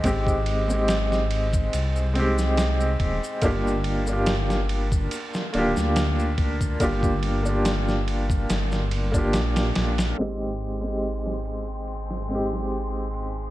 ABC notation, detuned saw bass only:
X:1
M:4/4
L:1/16
Q:"Swing 16ths" 1/4=71
K:Ablyd
V:1 name="Detuned saw bass" clef=bass
A,,,8 C,,6 E,,, z | G,,,8 z2 D,,, D,,4- D,, | G,,,8 G,,,4 B,,,2 B,,,2 | z16 |]